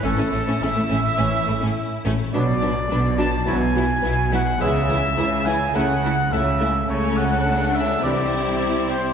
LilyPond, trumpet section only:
\new Staff \with { instrumentName = "Trumpet section" } { \time 4/4 \key a \major \tempo 4 = 105 a'4 e''2~ e''8 r8 | d''4. a''8 gis''4. fis''8 | e''4. gis''8 fis''4 e''4 | cis''8 fis''4 e''8 d''4. c''8 | }